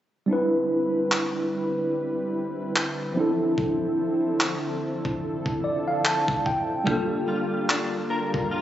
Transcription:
0.26 analog synth pad D3 G3 C4 E4 B4, tine electric piano G3 C4 D4
0.31 tine electric piano E4 B4
1.12 clap
2.76 clap
3.14 tine electric piano F3 C4 D4, analog synth pad F3 A4
3.19 tine electric piano E4 A4
3.58 kick
4.40 clap
5.05 kick
5.46 kick
5.64 tine electric piano D5
5.88 tine electric piano F5
6.05 tine electric piano A5, clap
6.28 kick
6.46 tine electric piano G5, kick
6.84 tine electric piano G3 A#3 D4, clean electric guitar G3, analog synth pad G3 A#3 F4 G4, kick
6.89 tine electric piano F4 A4
7.28 clean electric guitar F4
7.69 clean electric guitar D4, clap
8.10 clean electric guitar A#4
8.34 kick
8.51 clean electric guitar F4

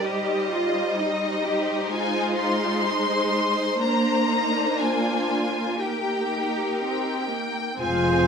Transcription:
Already playing: viola section G3
0.04 violin section D#4 C5 D#5, cello section G4
0.51 cello section F4
0.98 cello section D#4
1.44 cello section G4
1.90 viola section G#3, cello section F4, violin section G#5
2.39 violin section C6
2.86 cello section D#4
3.81 viola section A#3, cello section D4, violin section D4 A#5
4.29 cello section D#4
4.78 cello section F4, violin section G#5
5.79 violin section D#4 A#4 G5, cello section G4
6.81 viola section C4, violin section G5
7.31 viola section A#3
7.80 double bass section F1, cello section F2, french horn section F3 F4, viola section G#3 C4, clarinet F4, violin section G#4 F5 G#5, oboe C5

